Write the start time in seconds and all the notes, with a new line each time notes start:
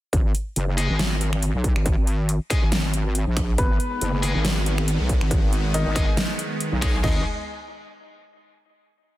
0.13 G#1, kick, closed hi-hat
0.35 closed hi-hat
0.56 F#1, closed hi-hat
0.78 G#3 D#4 G#4, open hi-hat
0.89 G#1
0.99 snare, closed hi-hat
1.21 closed hi-hat
1.33 finger snap
1.42 closed hi-hat
1.54 B1
1.64 kick, closed hi-hat
1.76 G#1, finger snap
1.86 kick, closed hi-hat
1.97 G#1
2.07 closed hi-hat
2.29 closed hi-hat
2.50 G#3 D#4 G#4, finger snap, kick, open hi-hat
2.62 G#1
2.72 snare, closed hi-hat
2.94 closed hi-hat
3.15 closed hi-hat
3.27 A#1
3.37 finger snap, kick, closed hi-hat
3.58 G#1 D#3 G#3 B3 B4, kick, closed hi-hat
3.80 closed hi-hat
4.01 F#1, closed hi-hat
4.23 G#3 D#4 G#4, open hi-hat
4.35 G#1
4.45 snare, closed hi-hat
4.66 closed hi-hat
4.78 finger snap
4.88 closed hi-hat
5.00 B1
5.09 kick, closed hi-hat
5.21 G#1, finger snap
5.31 kick, closed hi-hat
5.43 G#1
5.53 closed hi-hat
5.74 D#3 D#4, closed hi-hat
5.86 G#1
5.95 G#3 D#4 G#4, finger snap, kick, open hi-hat
6.17 snare, closed hi-hat
6.39 closed hi-hat
6.61 closed hi-hat
6.72 B1
6.82 G#3 D#4 G#4, finger snap, kick, closed hi-hat
7.03 G#1 G#3 D#4 G#4 C5 D#5, kick, floor tom, crash